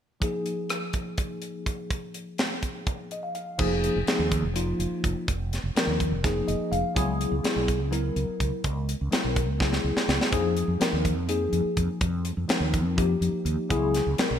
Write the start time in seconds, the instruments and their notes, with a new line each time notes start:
0.20 tine electric piano F3 A#3 D#4 G#4, kick, closed hi-hat
0.46 closed hi-hat
0.69 cross-stick, closed hi-hat
0.93 kick, closed hi-hat
1.18 kick, closed hi-hat
1.42 closed hi-hat
1.66 kick, closed hi-hat
1.90 kick, closed hi-hat
2.14 closed hi-hat
2.38 snare, closed hi-hat
2.63 kick, closed hi-hat
2.87 kick, closed hi-hat
3.11 tine electric piano D#5, closed hi-hat
3.23 tine electric piano F5
3.35 tine electric piano F5, closed hi-hat
3.58 fretless electric bass F1, tine electric piano F3 A#3 D#4 G#4, kick, crash
3.84 closed hi-hat
3.96 fretless electric bass F1
4.07 tine electric piano F3 A#3 D#4 G#4, snare, closed hi-hat
4.19 fretless electric bass D#2
4.31 kick, closed hi-hat
4.43 fretless electric bass F1
4.54 tine electric piano F3 A#3 D#4 F4, closed hi-hat
4.79 fretless electric bass F1, closed hi-hat
5.04 fretless electric bass F1, kick, closed hi-hat
5.28 fretless electric bass F1, kick, closed hi-hat
5.53 snare, closed hi-hat
5.63 fretless electric bass F1
5.75 tine electric piano F3 A#3 D#4 A#4, muted fretless electric bass stroke, snare, closed hi-hat
5.87 fretless electric bass D#2
6.00 kick, closed hi-hat
6.11 fretless electric bass F1
6.23 tine electric piano F3 A#3 D#4 G#4, kick, snare, closed hi-hat
6.48 fretless electric bass F1, tine electric piano D#5, closed hi-hat
6.72 fretless electric bass F1, tine electric piano F5, closed hi-hat
6.95 fretless electric bass C#2, tine electric piano F#3 B3 E4 G#4, kick, closed hi-hat
7.21 closed hi-hat
7.31 fretless electric bass C#2
7.43 tine electric piano F#3 B3 E4 G#4, snare, closed hi-hat
7.56 fretless electric bass B1
7.68 kick, closed hi-hat
7.80 fretless electric bass C#2
7.91 tine electric piano F#3 B3 E4 A#4, closed hi-hat
8.16 fretless electric bass C#2, closed hi-hat
8.40 fretless electric bass C#2, kick, closed hi-hat
8.64 fretless electric bass C#2, kick, closed hi-hat
8.89 closed hi-hat
9.01 fretless electric bass C#2
9.11 tine electric piano F#3 B3 E4 A#4, snare, closed hi-hat
9.24 fretless electric bass B1
9.36 kick, closed hi-hat
9.49 fretless electric bass C#2
9.59 tine electric piano F#3 B3 E4 G#4, kick, snare
9.73 snare
9.84 fretless electric bass C#2
9.97 snare
10.08 fretless electric bass C#2, snare
10.21 snare
10.31 fretless electric bass F2, tine electric piano F3 A#3 D#4 G#4, kick, closed hi-hat
10.57 closed hi-hat
10.68 fretless electric bass F2
10.80 tine electric piano F3 A#3 D#4 A#4, muted fretless electric bass stroke, snare, closed hi-hat
10.93 fretless electric bass D#2
11.05 kick, closed hi-hat
11.16 fretless electric bass F2
11.28 tine electric piano F3 A#3 D#4 G#4, closed hi-hat
11.52 fretless electric bass F2, closed hi-hat
11.65 muted fretless electric bass stroke
11.77 fretless electric bass F2, kick, closed hi-hat
12.01 fretless electric bass F2, kick, closed hi-hat
12.25 closed hi-hat
12.37 fretless electric bass F2
12.48 tine electric piano F3 A#3 D#4 A#4, muted fretless electric bass stroke, snare, closed hi-hat
12.60 fretless electric bass D#2
12.74 kick, closed hi-hat
12.84 fretless electric bass F2
12.96 tine electric piano F3 A#3 D#4 G4, kick, closed hi-hat
13.21 fretless electric bass F2, closed hi-hat
13.32 muted fretless electric bass stroke
13.45 fretless electric bass D#2, closed hi-hat
13.69 fretless electric bass C#2, tine electric piano F#3 B3 E4 G#4, kick, closed hi-hat
13.94 snare, closed hi-hat
14.06 fretless electric bass C#2
14.18 tine electric piano F#3 B3 E4 A#4, snare, closed hi-hat
14.30 fretless electric bass B1